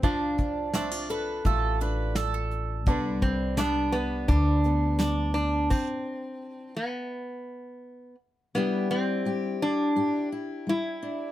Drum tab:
CC |--------|--------|x-------|--------|
HH |xxxxxxxx|xxxxxxxx|--------|--------|
SD |--o---o-|--o---o-|--------|--------|
BD |oo--o---|oo--o---|o-------|--------|